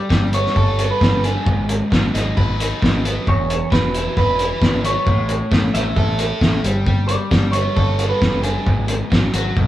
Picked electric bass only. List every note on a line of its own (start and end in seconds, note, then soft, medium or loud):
0.10 0.45 G1 medium
0.56 0.91 G1 medium
1.01 1.36 G1 medium
1.46 1.81 G#1 medium
1.92 2.09 G#1 medium
2.15 2.32 G#1 medium
2.37 2.72 G#1 medium
2.83 3.17 G#1 medium
3.27 3.62 E1 medium
3.72 4.06 E1 medium
4.17 4.51 E1 medium
4.62 4.96 G#1 medium
5.07 5.41 A1 loud
5.52 5.69 A1 medium
5.74 5.92 A1 medium
5.97 6.31 A1 medium
6.41 6.59 A1 medium
6.64 7.16 G1 medium
7.31 7.66 G1 medium
7.77 8.11 G1 medium
8.21 8.56 F#1 medium
8.67 9.01 G#1 medium
9.12 9.29 G#1 medium
9.34 9.51 G#1 medium
9.57 9.67 B1 medium